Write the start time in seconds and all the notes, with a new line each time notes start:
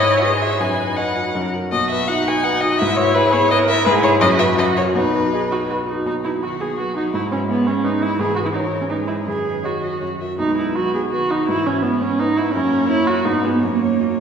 Already playing: G#2 E4 B4 C#5 D#5
0.07 E4
0.17 C#5
0.24 G#4 B4 D#5
0.42 E4 E5
0.60 F#2 D#4 B4 G#5
0.80 B4
0.96 D#5 F#5
1.16 F#4
1.35 F#2 A#4
1.54 F#4 A#4
1.72 B1 F#4 D#5
1.90 B4 E5
2.07 D#4 F#4 F#5
2.28 B3 G#5
2.44 B4 F#5
2.61 F#4 D#5
2.79 G#2 E4 E5
2.97 B4 C#5
3.14 E4 G#4 B4
3.33 B3 C#5
3.51 A#4 B4 D#5
3.69 E4 E5
3.86 G#2 E4 G#4 B4
4.03 E4 G#4 C#5
4.21 F#2 F#4 B4 D#5
4.39 F#4 B4 E5
4.57 F#2 F#4 D#5
4.77 F#4 A#4 C#5
4.95 B1 D#4 B4
5.14 B4
5.33 G#4 D#5
5.52 F#4
5.70 F#4 B4
5.87 D#4 F#4
6.06 B1 D#4
6.24 E4 B4
6.41 D#3 F#4
6.60 B3 G#4
6.78 F#3 F#4 B4
6.96 D#4 F#4
7.13 G#2 G#3 E4
7.31 C#4 B4
7.48 B3 E4
7.66 B3 C#4
7.84 D#4 B4
8.02 E4
8.19 G#2 E3 G#4 B4
8.35 F#4 B4
8.45 E4
8.52 D#4 A#4 C#5
8.73 E4
8.81 C#4
8.89 G#3 D#4 G#4 B4
9.07 E4
9.25 F#2 D#3 G#4 B4
9.46 B4
9.63 F#4 C#5 D#5
9.82 F#4 D#5
10.01 F#2 C#5
10.20 F#4 A#4 E5
10.38 B1 G#3 D#4 B4
10.58 E4 B4
10.75 F#3 F#4 B4
10.94 B3 G#4
11.11 D#3 F#4 B4
11.30 D#4 F#4
11.48 G#2 E3 E4 B4
11.66 C#4 B4
11.82 G#3 B3 E4 B4
12.01 B3 C#4
12.19 B3 D#4 B4
12.37 E4
12.53 F#2 A#3 C#4 A#4
12.73 A#4
12.88 E4 C#5
13.07 F#4
13.25 G#2 B3 D#4 B4
13.45 B3 D#4 G#4
13.60 F#2 A#3 C#4 C#5
13.82 C#5
14.00 D#4 F#4